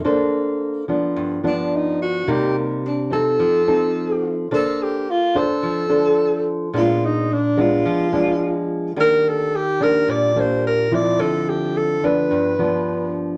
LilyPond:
<<
  \new Staff \with { instrumentName = "Alto saxophone" } { \time 4/4 \key bes \major \tempo 4 = 108 r2 r8 d'8 ees'8 ges'8 | g'8 bes8 d'8 a'2~ a'16 r16 | a'8 g'8 f'8 a'2 r8 | f'8 ees'8 d'8 f'2 r8 |
bes'8 a'8 g'8 bes'8 d''8 c''8 bes'8 d''8 | a'8 g'8 a'8 ces''2 r8 | }
  \new Staff \with { instrumentName = "Nylon-string guitar" } { \time 4/4 \key bes \major << { <d' a' c''>4. <f ces' d'>4 <f b d'>4. | <g bes ees'>4 r8 <c' ees' a'>4 <c' ees' a'>4. | <d' a' c''>4 r8 <d' a' c''>4 <d' a' c''>4. | <aes ces' d'>4 r8 <aes ces' d'>4 <aes ces' d'>4. |
<g bes d'>4 r8 <g bes d'>4 <g bes d'>4 <f c' e'>8~ | <f c' e'>4. <f ces' d'>4 <f b d'>4. | } \\ { bes2 g,2 | c2 f2 | bes2 f2 | bes,2 f2 |
ees2 bes,2 | d2 g,2 | } >> }
>>